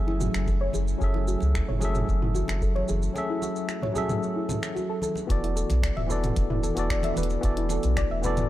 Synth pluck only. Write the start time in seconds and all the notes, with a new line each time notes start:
0.07 E4
0.20 F#4
0.47 A4
0.61 C#5
0.74 G#4
1.15 E4
1.27 F#4
1.54 A4
1.68 C#5
1.81 G#4
2.22 E4
2.35 F#4
2.62 A4
2.75 C#5
2.89 G#4
3.30 E4
3.43 F#4
3.69 A4
3.83 C#5
3.95 G#4
4.36 E4
4.49 A4
4.75 F#4
4.89 A4
5.02 A4
5.43 E4
5.56 A4
5.83 D5
5.97 E5
6.10 B4
6.50 E4
6.63 A4
6.90 D5
7.04 E5
7.17 B4
7.58 E4
7.71 A4
7.97 D5
8.11 E5
8.24 B4